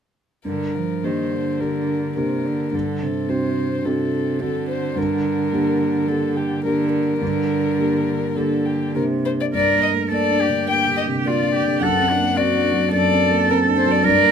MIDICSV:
0, 0, Header, 1, 4, 480
1, 0, Start_track
1, 0, Key_signature, -2, "minor"
1, 0, Tempo, 574163
1, 380, Time_signature, 4, 2, 24, 8
1, 1814, Tempo, 561272
1, 6614, Tempo, 578592
1, 9494, Tempo, 556586
1, 12135, End_track
2, 0, Start_track
2, 0, Title_t, "Violin"
2, 0, Program_c, 0, 40
2, 385, Note_on_c, 0, 70, 36
2, 871, Note_on_c, 0, 72, 35
2, 884, Note_off_c, 0, 70, 0
2, 1337, Note_on_c, 0, 70, 35
2, 1349, Note_off_c, 0, 72, 0
2, 1805, Note_off_c, 0, 70, 0
2, 1810, Note_on_c, 0, 70, 39
2, 2308, Note_on_c, 0, 69, 40
2, 2321, Note_off_c, 0, 70, 0
2, 2775, Note_on_c, 0, 72, 40
2, 2788, Note_off_c, 0, 69, 0
2, 3252, Note_on_c, 0, 69, 40
2, 3265, Note_off_c, 0, 72, 0
2, 3730, Note_off_c, 0, 69, 0
2, 3734, Note_on_c, 0, 69, 45
2, 3958, Note_off_c, 0, 69, 0
2, 3963, Note_on_c, 0, 72, 48
2, 4212, Note_on_c, 0, 70, 48
2, 4224, Note_off_c, 0, 72, 0
2, 5159, Note_on_c, 0, 69, 48
2, 5172, Note_off_c, 0, 70, 0
2, 5398, Note_on_c, 0, 67, 45
2, 5411, Note_off_c, 0, 69, 0
2, 5632, Note_off_c, 0, 67, 0
2, 5637, Note_on_c, 0, 70, 53
2, 5877, Note_off_c, 0, 70, 0
2, 5882, Note_on_c, 0, 70, 55
2, 7094, Note_on_c, 0, 69, 44
2, 7107, Note_off_c, 0, 70, 0
2, 7337, Note_on_c, 0, 67, 42
2, 7349, Note_off_c, 0, 69, 0
2, 7581, Note_off_c, 0, 67, 0
2, 7587, Note_on_c, 0, 70, 54
2, 7654, Note_off_c, 0, 70, 0
2, 7834, Note_on_c, 0, 72, 55
2, 7882, Note_off_c, 0, 72, 0
2, 7960, Note_on_c, 0, 74, 45
2, 8006, Note_off_c, 0, 74, 0
2, 8078, Note_on_c, 0, 74, 59
2, 8304, Note_off_c, 0, 74, 0
2, 8309, Note_on_c, 0, 75, 51
2, 8376, Note_off_c, 0, 75, 0
2, 8557, Note_on_c, 0, 74, 70
2, 9021, Note_off_c, 0, 74, 0
2, 9030, Note_on_c, 0, 79, 62
2, 9254, Note_off_c, 0, 79, 0
2, 9259, Note_on_c, 0, 75, 50
2, 9326, Note_off_c, 0, 75, 0
2, 9497, Note_on_c, 0, 74, 55
2, 9972, Note_off_c, 0, 74, 0
2, 9981, Note_on_c, 0, 78, 69
2, 10455, Note_on_c, 0, 74, 70
2, 10468, Note_off_c, 0, 78, 0
2, 10933, Note_off_c, 0, 74, 0
2, 10938, Note_on_c, 0, 74, 72
2, 11412, Note_off_c, 0, 74, 0
2, 11432, Note_on_c, 0, 70, 66
2, 11501, Note_off_c, 0, 70, 0
2, 11657, Note_on_c, 0, 72, 56
2, 11786, Note_on_c, 0, 74, 63
2, 11799, Note_off_c, 0, 72, 0
2, 11898, Note_off_c, 0, 74, 0
2, 11903, Note_on_c, 0, 74, 76
2, 12135, Note_off_c, 0, 74, 0
2, 12135, End_track
3, 0, Start_track
3, 0, Title_t, "Grand piano"
3, 0, Program_c, 1, 0
3, 375, Note_on_c, 1, 43, 33
3, 509, Control_c, 1, 64, 127
3, 847, Note_off_c, 1, 43, 0
3, 864, Note_on_c, 1, 58, 28
3, 866, Note_on_c, 1, 62, 25
3, 873, Note_on_c, 1, 67, 28
3, 1307, Note_off_c, 1, 58, 0
3, 1308, Note_off_c, 1, 62, 0
3, 1312, Note_off_c, 1, 67, 0
3, 1339, Note_on_c, 1, 58, 23
3, 1343, Note_on_c, 1, 62, 27
3, 1345, Note_on_c, 1, 67, 28
3, 1781, Note_off_c, 1, 58, 0
3, 1783, Note_off_c, 1, 62, 0
3, 1784, Note_off_c, 1, 67, 0
3, 1807, Note_on_c, 1, 58, 30
3, 1812, Note_on_c, 1, 62, 27
3, 1813, Note_on_c, 1, 67, 33
3, 2258, Note_off_c, 1, 58, 0
3, 2261, Note_off_c, 1, 62, 0
3, 2262, Note_off_c, 1, 67, 0
3, 2285, Note_on_c, 1, 43, 35
3, 2313, Control_c, 1, 64, 0
3, 2475, Control_c, 1, 64, 127
3, 2753, Note_off_c, 1, 43, 0
3, 2766, Note_on_c, 1, 60, 29
3, 2770, Note_on_c, 1, 62, 29
3, 2772, Note_on_c, 1, 66, 32
3, 3213, Note_off_c, 1, 60, 0
3, 3215, Note_off_c, 1, 62, 0
3, 3216, Note_off_c, 1, 66, 0
3, 3243, Note_on_c, 1, 60, 33
3, 3249, Note_on_c, 1, 62, 31
3, 3252, Note_on_c, 1, 66, 31
3, 3691, Note_off_c, 1, 60, 0
3, 3694, Note_off_c, 1, 62, 0
3, 3696, Note_off_c, 1, 66, 0
3, 3724, Note_on_c, 1, 60, 34
3, 3730, Note_on_c, 1, 62, 32
3, 3733, Note_on_c, 1, 66, 37
3, 4172, Note_off_c, 1, 60, 0
3, 4176, Note_off_c, 1, 62, 0
3, 4177, Note_off_c, 1, 66, 0
3, 4199, Note_on_c, 1, 43, 42
3, 4224, Control_c, 1, 64, 0
3, 4369, Control_c, 1, 64, 127
3, 4666, Note_off_c, 1, 43, 0
3, 4682, Note_on_c, 1, 58, 35
3, 4690, Note_on_c, 1, 62, 32
3, 4690, Note_on_c, 1, 67, 41
3, 5125, Note_off_c, 1, 58, 0
3, 5129, Note_off_c, 1, 62, 0
3, 5129, Note_off_c, 1, 67, 0
3, 5153, Note_on_c, 1, 58, 33
3, 5157, Note_on_c, 1, 62, 33
3, 5163, Note_on_c, 1, 67, 34
3, 5606, Note_off_c, 1, 58, 0
3, 5609, Note_off_c, 1, 62, 0
3, 5612, Note_off_c, 1, 67, 0
3, 5641, Note_on_c, 1, 58, 37
3, 5646, Note_on_c, 1, 62, 38
3, 5655, Note_on_c, 1, 67, 38
3, 6095, Note_off_c, 1, 58, 0
3, 6097, Note_off_c, 1, 62, 0
3, 6101, Note_off_c, 1, 67, 0
3, 6130, Note_on_c, 1, 43, 47
3, 6145, Control_c, 1, 64, 0
3, 6280, Control_c, 1, 64, 127
3, 6602, Note_off_c, 1, 43, 0
3, 6615, Note_on_c, 1, 62, 34
3, 6617, Note_on_c, 1, 58, 35
3, 6620, Note_on_c, 1, 67, 36
3, 7061, Note_off_c, 1, 62, 0
3, 7062, Note_off_c, 1, 58, 0
3, 7064, Note_off_c, 1, 67, 0
3, 7089, Note_on_c, 1, 58, 34
3, 7094, Note_on_c, 1, 62, 30
3, 7098, Note_on_c, 1, 67, 33
3, 7545, Note_off_c, 1, 58, 0
3, 7548, Note_off_c, 1, 62, 0
3, 7549, Note_off_c, 1, 67, 0
3, 7576, Note_on_c, 1, 58, 32
3, 7578, Note_on_c, 1, 62, 28
3, 7583, Note_on_c, 1, 67, 36
3, 8036, Note_off_c, 1, 58, 0
3, 8037, Note_off_c, 1, 62, 0
3, 8040, Note_off_c, 1, 67, 0
3, 8070, Note_on_c, 1, 43, 43
3, 8089, Control_c, 1, 64, 0
3, 8228, Note_on_c, 1, 58, 28
3, 8243, Control_c, 1, 64, 127
3, 8386, Note_on_c, 1, 57, 26
3, 8484, Note_off_c, 1, 58, 0
3, 8544, Note_on_c, 1, 58, 34
3, 8547, Note_off_c, 1, 57, 0
3, 8707, Note_on_c, 1, 62, 32
3, 8801, Note_off_c, 1, 58, 0
3, 8861, Note_on_c, 1, 50, 32
3, 8962, Note_off_c, 1, 62, 0
3, 8996, Note_off_c, 1, 43, 0
3, 9016, Note_on_c, 1, 58, 35
3, 9118, Note_off_c, 1, 50, 0
3, 9177, Note_on_c, 1, 50, 30
3, 9273, Note_off_c, 1, 58, 0
3, 9339, Note_on_c, 1, 48, 30
3, 9432, Note_off_c, 1, 50, 0
3, 9492, Note_on_c, 1, 58, 34
3, 9497, Note_off_c, 1, 48, 0
3, 9655, Note_on_c, 1, 62, 33
3, 9754, Note_off_c, 1, 58, 0
3, 9819, Note_on_c, 1, 50, 36
3, 9915, Note_off_c, 1, 62, 0
3, 9967, Note_on_c, 1, 42, 45
3, 9981, Note_off_c, 1, 50, 0
3, 10000, Control_c, 1, 64, 0
3, 10121, Control_c, 1, 64, 127
3, 10136, Note_on_c, 1, 60, 33
3, 10290, Note_on_c, 1, 58, 33
3, 10395, Note_off_c, 1, 60, 0
3, 10455, Note_off_c, 1, 58, 0
3, 10462, Note_on_c, 1, 60, 36
3, 10617, Note_on_c, 1, 62, 40
3, 10716, Note_off_c, 1, 60, 0
3, 10765, Note_on_c, 1, 54, 35
3, 10874, Note_off_c, 1, 62, 0
3, 10903, Note_off_c, 1, 42, 0
3, 10934, Note_on_c, 1, 42, 44
3, 11029, Note_off_c, 1, 54, 0
3, 11100, Note_on_c, 1, 60, 36
3, 11263, Note_on_c, 1, 58, 35
3, 11358, Note_off_c, 1, 60, 0
3, 11423, Note_off_c, 1, 58, 0
3, 11433, Note_on_c, 1, 60, 44
3, 11584, Note_on_c, 1, 62, 44
3, 11683, Note_off_c, 1, 60, 0
3, 11741, Note_on_c, 1, 54, 39
3, 11837, Note_off_c, 1, 62, 0
3, 11868, Note_off_c, 1, 42, 0
3, 11898, Note_on_c, 1, 43, 51
3, 11900, Note_off_c, 1, 54, 0
3, 11917, Control_c, 1, 64, 0
3, 12030, Control_c, 1, 64, 127
3, 12059, Note_on_c, 1, 58, 37
3, 12135, Note_off_c, 1, 43, 0
3, 12135, Note_off_c, 1, 58, 0
3, 12135, End_track
4, 0, Start_track
4, 0, Title_t, "Cello"
4, 0, Program_c, 2, 42
4, 383, Note_on_c, 2, 50, 38
4, 630, Note_on_c, 2, 53, 36
4, 642, Note_off_c, 2, 50, 0
4, 870, Note_on_c, 2, 51, 32
4, 882, Note_off_c, 2, 53, 0
4, 1104, Note_on_c, 2, 50, 37
4, 1117, Note_off_c, 2, 51, 0
4, 1813, Note_on_c, 2, 48, 38
4, 1826, Note_off_c, 2, 50, 0
4, 2058, Note_on_c, 2, 50, 41
4, 2071, Note_off_c, 2, 48, 0
4, 2295, Note_off_c, 2, 50, 0
4, 2300, Note_on_c, 2, 50, 41
4, 2543, Note_on_c, 2, 48, 39
4, 2556, Note_off_c, 2, 50, 0
4, 3252, Note_off_c, 2, 48, 0
4, 3257, Note_on_c, 2, 48, 36
4, 3731, Note_on_c, 2, 50, 48
4, 3744, Note_off_c, 2, 48, 0
4, 5646, Note_off_c, 2, 50, 0
4, 5650, Note_on_c, 2, 50, 53
4, 6124, Note_off_c, 2, 50, 0
4, 6131, Note_on_c, 2, 50, 54
4, 7076, Note_off_c, 2, 50, 0
4, 7098, Note_on_c, 2, 50, 40
4, 7583, Note_on_c, 2, 48, 43
4, 7596, Note_off_c, 2, 50, 0
4, 7903, Note_off_c, 2, 48, 0
4, 8071, Note_on_c, 2, 70, 49
4, 8516, Note_off_c, 2, 70, 0
4, 8551, Note_on_c, 2, 69, 45
4, 8785, Note_on_c, 2, 67, 51
4, 8797, Note_off_c, 2, 69, 0
4, 9505, Note_on_c, 2, 65, 47
4, 9518, Note_off_c, 2, 67, 0
4, 9744, Note_off_c, 2, 65, 0
4, 9750, Note_on_c, 2, 67, 48
4, 9987, Note_on_c, 2, 69, 54
4, 10000, Note_off_c, 2, 67, 0
4, 10224, Note_on_c, 2, 62, 45
4, 10237, Note_off_c, 2, 69, 0
4, 10460, Note_on_c, 2, 66, 50
4, 10473, Note_off_c, 2, 62, 0
4, 10935, Note_off_c, 2, 66, 0
4, 10940, Note_on_c, 2, 69, 60
4, 11895, Note_on_c, 2, 70, 68
4, 11908, Note_off_c, 2, 69, 0
4, 12135, Note_off_c, 2, 70, 0
4, 12135, End_track
0, 0, End_of_file